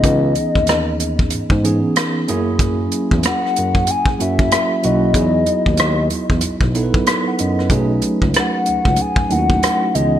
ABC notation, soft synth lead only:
X:1
M:4/4
L:1/8
Q:"Swing 16ths" 1/4=94
K:Bmix
V:1 name="Soft synth lead"
d4- d z3 | z2 f2 g e2 d- | d4- d z3 | z2 f2 g f2 d |]